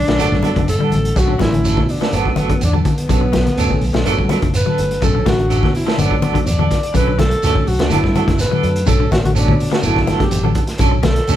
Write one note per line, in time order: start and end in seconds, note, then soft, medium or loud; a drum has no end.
0.00 0.64 D4 loud
0.07 0.17 B1 medium
0.07 0.14 D3 medium
0.07 0.21 D3 medium
0.07 0.14 A3 medium
0.07 0.14 C#4 medium
0.07 0.19 C#4 soft
0.07 0.18 D4 soft
0.07 0.18 A4 medium
0.07 snare medium
0.07 closed hi-hat soft
0.18 0.29 G1 medium
0.18 0.59 F#3 medium
0.18 0.34 F#3 medium
0.18 0.58 A3 medium
0.18 0.58 B3 medium
0.18 0.34 B3 medium
0.18 0.34 D4 medium
0.18 0.34 A4 medium
0.18 closed hi-hat medium
0.18 high conga medium
0.18 shekere medium
0.32 0.52 G2 medium
0.32 kick medium
0.32 snare soft
0.43 0.58 F#3 medium
0.43 0.59 B3 medium
0.43 0.59 D4 medium
0.43 0.59 A4 medium
0.43 closed hi-hat soft
0.43 high conga medium
0.43 shekere soft
0.56 0.76 F#1 medium
0.56 0.70 D3 medium
0.56 kick medium
0.56 closed hi-hat soft
0.68 1.19 A4 medium
0.68 closed hi-hat medium
0.68 shekere medium
0.79 0.94 G3 medium
0.79 0.95 B3 soft
0.79 0.95 D4 soft
0.79 0.95 A4 soft
0.79 high conga medium
0.90 1.12 A1 medium
0.90 1.06 F#3 medium
0.90 1.05 A3 medium
0.90 1.06 C#4 medium
0.90 closed hi-hat soft
0.90 high conga medium
0.90 shekere soft
1.05 closed hi-hat soft
1.15 1.35 B1 medium
1.15 1.29 D3 medium
1.15 1.31 F#3 medium
1.15 1.29 A3 medium
1.15 1.29 C#4 medium
1.15 1.31 C#4 medium
1.15 1.31 D4 medium
1.15 1.41 F#4 medium
1.15 1.32 A4 medium
1.15 muted clean electric guitar stroke medium
1.15 kick medium
1.15 snare soft
1.15 closed hi-hat medium
1.15 shekere medium
1.28 1.34 D3 medium
1.39 1.78 A1 medium
1.39 1.47 D3 medium
1.39 1.53 F#3 medium
1.39 1.47 A3 medium
1.39 1.47 C#4 medium
1.39 1.92 E4 medium
1.39 kick medium
1.39 snare medium
1.39 closed hi-hat soft
1.39 high conga medium
1.39 shekere soft
1.53 1.85 D3 medium
1.53 1.85 A3 medium
1.53 1.85 C#4 medium
1.53 closed hi-hat soft
1.53 high conga medium
1.64 1.79 F#3 medium
1.64 1.80 C#4 medium
1.64 1.80 D4 medium
1.64 1.80 A4 medium
1.64 closed hi-hat medium
1.64 shekere medium
1.77 1.96 B2 medium
1.77 kick medium
1.77 high conga medium
1.89 2.17 D4 medium
1.89 open hi-hat medium
1.89 shekere soft
2.01 2.14 D3 medium
2.01 2.13 C#4 soft
2.01 2.12 D4 soft
2.01 2.13 A4 soft
2.01 snare medium
2.13 2.51 G1 loud
2.13 2.28 F#3 medium
2.13 2.65 F#3 medium
2.13 2.65 A3 medium
2.13 2.28 B3 medium
2.13 2.65 B3 medium
2.13 2.62 B3 medium
2.13 2.28 D4 medium
2.13 2.28 A4 medium
2.13 closed hi-hat medium
2.13 shekere medium
2.25 kick soft
2.36 2.52 F#3 medium
2.36 2.52 B3 medium
2.36 2.53 D4 medium
2.36 2.52 A4 medium
2.36 closed hi-hat soft
2.36 high conga medium
2.36 shekere soft
2.49 2.63 D3 medium
2.49 kick medium
2.49 closed hi-hat soft
2.61 2.81 E2 medium
2.61 2.74 D4 medium
2.61 closed hi-hat medium
2.61 shekere medium
2.73 2.87 F#3 medium
2.73 2.88 B3 soft
2.73 2.88 D4 soft
2.73 2.88 A4 medium
2.73 high conga medium
2.85 4.24 B3 medium
2.85 kick medium
2.85 closed hi-hat soft
2.85 high conga medium
2.85 shekere soft
2.98 closed hi-hat medium
3.09 3.48 B1 medium
3.09 3.16 C#3 medium
3.09 3.24 F#3 medium
3.09 3.24 C#4 soft
3.09 3.24 D4 soft
3.09 3.25 A4 medium
3.09 kick medium
3.09 closed hi-hat medium
3.09 shekere medium
3.21 3.28 D3 medium
3.33 3.46 F#3 medium
3.33 kick medium
3.33 snare medium
3.33 closed hi-hat medium
3.33 high conga medium
3.33 shekere soft
3.46 snare soft
3.46 closed hi-hat soft
3.46 high conga medium
3.57 3.67 D2 medium
3.57 3.72 F#3 medium
3.57 3.73 C#4 medium
3.57 3.73 D4 medium
3.57 3.73 A4 medium
3.57 closed hi-hat medium
3.57 shekere medium
3.70 3.83 D3 medium
3.70 3.83 A3 medium
3.70 3.83 C#4 medium
3.70 kick medium
3.70 high conga medium
3.81 3.92 B1 medium
3.81 open hi-hat medium
3.81 shekere soft
3.93 4.03 B1 medium
3.93 4.00 D3 medium
3.93 4.07 D3 medium
3.93 4.00 A3 medium
3.93 4.00 C#4 medium
3.93 4.06 C#4 soft
3.93 4.05 D4 soft
3.93 muted clean electric guitar stroke soft
3.93 snare medium
3.93 closed hi-hat soft
4.05 4.15 G1 medium
4.05 4.45 F#3 medium
4.05 4.21 F#3 medium
4.05 4.45 A3 medium
4.05 4.45 B3 medium
4.05 4.21 B3 medium
4.05 4.21 D4 medium
4.05 4.21 A4 medium
4.05 closed hi-hat medium
4.05 shekere medium
4.18 4.38 G2 medium
4.18 kick medium
4.29 4.45 F#3 medium
4.29 4.45 B3 medium
4.29 4.45 D4 medium
4.29 snare soft
4.29 closed hi-hat soft
4.29 high conga medium
4.29 shekere soft
4.42 4.62 F#1 medium
4.42 4.56 D3 medium
4.42 kick medium
4.42 closed hi-hat soft
4.54 5.05 B4 medium
4.54 closed hi-hat medium
4.54 shekere medium
4.66 4.79 F#3 medium
4.66 4.81 B3 soft
4.66 4.81 D4 soft
4.66 4.81 A4 soft
4.66 high conga medium
4.78 4.98 G1 medium
4.78 4.92 F#3 medium
4.78 4.92 A3 soft
4.78 4.92 C#4 medium
4.78 closed hi-hat soft
4.78 shekere soft
4.91 closed hi-hat soft
5.02 5.21 B1 medium
5.02 5.09 C#3 medium
5.02 5.15 D3 medium
5.02 5.17 F#3 soft
5.02 5.16 A3 medium
5.02 5.16 C#4 medium
5.02 5.17 C#4 medium
5.02 5.18 D4 medium
5.02 5.18 A4 medium
5.02 5.27 A4 medium
5.02 kick medium
5.02 closed hi-hat medium
5.02 shekere medium
5.15 5.21 D3 medium
5.25 5.65 A1 medium
5.25 5.33 D3 medium
5.25 5.39 F#3 medium
5.25 5.33 A3 medium
5.25 5.33 C#4 medium
5.25 5.72 F#4 medium
5.25 kick medium
5.25 snare medium
5.25 closed hi-hat soft
5.25 high conga medium
5.25 shekere soft
5.38 5.70 D3 medium
5.38 5.71 A3 soft
5.38 5.71 D4 medium
5.38 closed hi-hat soft
5.49 5.65 F#3 medium
5.49 5.65 C#4 medium
5.49 5.65 D4 medium
5.49 5.66 A4 medium
5.49 closed hi-hat medium
5.49 shekere medium
5.63 5.82 B2 medium
5.63 kick medium
5.63 snare soft
5.63 high conga medium
5.75 6.00 E4 medium
5.75 open hi-hat medium
5.75 shekere soft
5.86 6.00 D3 medium
5.86 5.99 C#4 soft
5.86 5.98 D4 soft
5.86 5.98 A4 soft
5.86 snare medium
5.98 6.37 G1 medium
5.98 6.50 F#3 medium
5.98 6.14 F#3 medium
5.98 6.51 A3 medium
5.98 6.51 B3 medium
5.98 6.14 B3 medium
5.98 6.48 D4 medium
5.98 6.14 D4 medium
5.98 6.14 A4 medium
5.98 closed hi-hat medium
5.98 high conga medium
5.98 shekere medium
6.11 kick medium
6.22 6.37 F#3 medium
6.22 6.37 B3 medium
6.22 6.38 D4 medium
6.22 6.38 A4 medium
6.22 closed hi-hat soft
6.22 high conga loud
6.22 shekere soft
6.34 6.48 D3 medium
6.34 kick medium
6.34 closed hi-hat soft
6.47 6.67 E2 medium
6.47 6.95 D5 medium
6.47 closed hi-hat medium
6.47 shekere medium
6.59 6.72 F#3 medium
6.59 6.74 B3 soft
6.59 6.74 D4 soft
6.59 6.73 A4 soft
6.59 high conga medium
6.71 kick medium
6.71 snare soft
6.71 closed hi-hat medium
6.71 shekere soft
6.83 closed hi-hat medium
6.94 7.33 B1 medium
6.94 7.01 C#3 medium
6.94 7.10 F#3 soft
6.94 7.10 C#4 medium
6.94 7.10 D4 medium
6.94 7.11 A4 medium
6.94 7.18 B4 medium
6.94 kick medium
6.94 closed hi-hat medium
6.94 shekere medium
7.08 7.14 D3 medium
7.18 7.32 F#3 medium
7.18 7.69 A4 medium
7.18 kick medium
7.18 snare medium
7.18 closed hi-hat soft
7.18 high conga medium
7.18 shekere soft
7.31 closed hi-hat soft
7.43 7.53 D2 medium
7.43 7.58 F#3 medium
7.43 7.58 C#4 medium
7.43 7.58 D4 medium
7.43 7.59 A4 medium
7.43 snare soft
7.43 closed hi-hat medium
7.43 shekere medium
7.55 7.68 D3 medium
7.55 7.68 A3 medium
7.55 7.68 C#4 medium
7.55 kick medium
7.55 high conga medium
7.67 7.77 B1 medium
7.67 7.91 F#4 medium
7.67 open hi-hat medium
7.67 shekere soft
7.79 7.89 D2 medium
7.79 7.86 D3 medium
7.79 7.93 D3 medium
7.79 7.86 A3 medium
7.79 7.86 C#4 medium
7.79 7.91 C#4 soft
7.79 7.91 D4 soft
7.79 7.91 A4 soft
7.79 snare medium
7.79 closed hi-hat medium
7.90 8.01 G1 medium
7.90 8.30 F#3 medium
7.90 8.06 F#3 medium
7.90 8.31 A3 medium
7.90 8.31 B3 medium
7.90 8.07 B3 medium
7.90 8.07 D4 medium
7.90 8.36 E4 medium
7.90 8.07 A4 medium
7.90 closed hi-hat medium
7.90 high conga medium
7.90 shekere medium
8.04 8.23 G2 medium
8.04 kick medium
8.04 snare soft
8.15 8.31 F#3 medium
8.15 8.31 B3 medium
8.15 8.31 D4 medium
8.15 8.31 A4 medium
8.15 closed hi-hat soft
8.15 high conga medium
8.15 shekere soft
8.28 8.47 F#1 medium
8.28 8.41 D3 medium
8.28 kick medium
8.28 snare soft
8.28 closed hi-hat soft
8.39 8.85 B4 medium
8.39 snare soft
8.39 closed hi-hat medium
8.39 shekere medium
8.51 8.65 F#3 medium
8.51 8.67 B3 soft
8.51 8.67 D4 soft
8.51 8.66 A4 medium
8.51 high conga medium
8.62 8.83 F#2 medium
8.62 8.77 F#3 medium
8.62 8.77 A3 medium
8.62 8.77 D4 medium
8.62 closed hi-hat soft
8.62 shekere soft
8.76 closed hi-hat medium
8.86 9.07 B1 medium
8.86 8.94 C#3 medium
8.86 9.00 D3 medium
8.86 9.02 F#3 medium
8.86 9.00 A3 medium
8.86 9.00 C#4 medium
8.86 9.02 C#4 medium
8.86 9.03 D4 medium
8.86 9.10 A4 medium
8.86 9.03 A4 medium
8.86 kick medium
8.86 closed hi-hat medium
8.86 shekere medium
9.00 9.07 D3 medium
9.11 9.50 A1 medium
9.11 9.18 D3 medium
9.11 9.18 A3 medium
9.11 9.18 C#4 loud
9.11 9.18 F#4 medium
9.11 kick medium
9.11 snare medium
9.11 closed hi-hat soft
9.11 high conga medium
9.11 shekere soft
9.24 9.56 D3 medium
9.24 9.56 A3 medium
9.24 9.57 B3 medium
9.24 9.30 F#4 medium
9.24 closed hi-hat soft
9.24 high conga medium
9.35 9.50 F#3 medium
9.35 9.51 C#4 medium
9.35 9.51 D4 medium
9.35 9.71 D4 medium
9.35 9.51 A4 medium
9.35 closed hi-hat medium
9.35 shekere medium
9.48 9.68 B2 medium
9.48 kick medium
9.48 high conga medium
9.59 open hi-hat medium
9.59 shekere soft
9.71 9.85 D3 medium
9.71 9.83 C#4 soft
9.71 9.82 D4 soft
9.71 9.79 F#4 medium
9.71 9.83 A4 soft
9.71 snare medium
9.83 10.22 G1 medium
9.83 9.99 F#3 medium
9.83 10.36 F#3 medium
9.83 10.36 A3 medium
9.83 9.99 B3 medium
9.83 10.36 B3 medium
9.83 9.99 D4 medium
9.83 10.19 E4 medium
9.83 9.99 A4 medium
9.83 closed hi-hat medium
9.83 high conga medium
9.83 shekere medium
9.96 kick medium
9.96 snare soft
10.07 10.23 F#3 medium
10.07 10.23 B3 medium
10.07 10.23 D4 medium
10.07 10.23 A4 medium
10.07 snare soft
10.07 closed hi-hat soft
10.07 high conga medium
10.07 shekere soft
10.20 10.34 D3 medium
10.20 10.55 G4 medium
10.20 kick medium
10.20 snare soft
10.20 closed hi-hat soft
10.31 10.52 A1 medium
10.31 closed hi-hat medium
10.31 shekere medium
10.43 10.58 F#3 medium
10.43 10.59 B3 soft
10.43 10.59 D4 soft
10.43 10.58 A4 medium
10.43 high conga medium
10.55 kick medium
10.55 closed hi-hat medium
10.55 shekere soft
10.67 snare soft
10.67 closed hi-hat medium
10.78 11.19 B1 medium
10.78 10.87 C#3 medium
10.78 10.95 F#3 medium
10.78 10.95 C#4 medium
10.78 10.95 D4 medium
10.78 10.95 A4 medium
10.78 kick medium
10.78 closed hi-hat medium
10.78 shekere medium
10.91 10.98 D3 medium
11.03 11.17 F#3 medium
11.03 11.36 A4 medium
11.03 kick medium
11.03 snare medium
11.03 closed hi-hat medium
11.03 high conga medium
11.03 shekere soft
11.16 snare soft
11.16 closed hi-hat soft
11.27 11.36 D2 medium
11.27 11.36 F#3 medium
11.27 11.36 C#4 medium
11.27 11.36 D4 medium
11.27 11.36 A4 medium
11.27 closed hi-hat medium
11.27 shekere medium